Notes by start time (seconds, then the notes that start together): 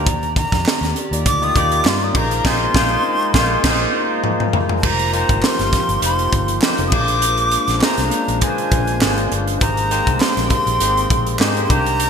Already playing: D5 A#5
0.06 D#2 D#3 G4, kick, closed hi-hat
0.23 closed hi-hat
0.36 A#5, kick, closed hi-hat
0.52 F2, kick, snare, closed hi-hat
0.66 snare, clap
0.81 D#2, snare, closed hi-hat
0.96 closed hi-hat
1.11 D#2 A#3 D#4 F4 G4 D5, closed hi-hat
1.26 D2 D6, kick, closed hi-hat
1.42 A#3 D#4 F4 G4 D5 D#6, closed hi-hat
1.56 D#2 A#3 D#4 F4 G4 D5 D6, kick, closed hi-hat
1.72 closed hi-hat
1.85 G2 C6, snare, clap
2.03 D#6
2.15 A#1 G#3 A#3 D#4 F4 G#4 C5 A#5, kick, crash
2.31 closed hi-hat
2.45 A#1 A#3 D#4 F4 G#4 C5 C6, kick, snare, crash
2.74 A#1 A#3 F4 G#4 C5, kick, snare
2.81 D#4
3.34 A#1 A#3 F4 G#4 C5, kick, snare
3.41 D#4
3.63 A#1 A#3 F4 G#4 C5, kick, snare, crash
3.71 D#4
4.24 mid tom
4.40 mid tom
4.53 floor tom
4.69 floor tom
4.79 A5
4.83 F1 F3 A#3 D#4 F4 G4 A#4 C5 A#5, kick, crash
4.99 closed hi-hat
5.13 A#3 D#4 F4 G4 A#4 A#5, closed hi-hat
5.21 C5
5.29 G#1, kick, closed hi-hat
5.43 C6, snare, clap
5.59 G1, snare, closed hi-hat
5.73 kick, snare, closed hi-hat
5.88 G1, closed hi-hat
6.02 F1 A#3 D#4 F4 G4 C5 C6, closed hi-hat
6.19 closed hi-hat
6.32 G1, kick, closed hi-hat
6.48 closed hi-hat
6.62 A#3 D#4 F4 G4 C5, snare, clap
6.78 F1, closed hi-hat
6.88 G#3 A#3 D4 D#6
6.92 A#1 A#3 D4 F4 G#4 C5 D6, kick, crash
7.08 closed hi-hat
7.22 closed hi-hat
7.38 closed hi-hat
7.52 closed hi-hat
7.68 A#1, snare, closed hi-hat
7.81 A#3 C#4 F4 G#4 C5 A#5, snare, clap
7.88 D4
7.98 C2, snare, closed hi-hat
8.11 closed hi-hat
8.28 A#1, closed hi-hat
8.41 A#3 D4 F4 G#4 B4 G#5, kick, closed hi-hat
8.49 C5
8.58 closed hi-hat
8.71 A#1, kick, closed hi-hat
8.87 closed hi-hat
9.01 G#1 A#3 D4 F4 G#4 C5, snare, clap
9.18 closed hi-hat
9.32 G1, closed hi-hat
9.47 closed hi-hat
9.61 G#1 A#3 C4 D#4 G4 G#4 C5 G5 A#5, kick, closed hi-hat
9.77 closed hi-hat
9.91 A#3 D#4 G4 G#4 C5, closed hi-hat
10.07 C2, kick, closed hi-hat
10.20 C6, snare, clap
10.37 A#1, snare, closed hi-hat
10.50 C6, kick, closed hi-hat
10.66 A#1, closed hi-hat
10.80 G#1 A#3 D#4 G4 G#4 C5, closed hi-hat
10.97 closed hi-hat
11.10 A#1, kick, closed hi-hat
11.27 closed hi-hat
11.39 G#2 A#3 D#4 G4 G#4 C5, snare, clap
11.57 closed hi-hat
11.64 C6
11.69 C2 C3 D#3 A#3 D4 D#4 G4 C5 A#5, kick, closed hi-hat
11.86 closed hi-hat
12.00 closed hi-hat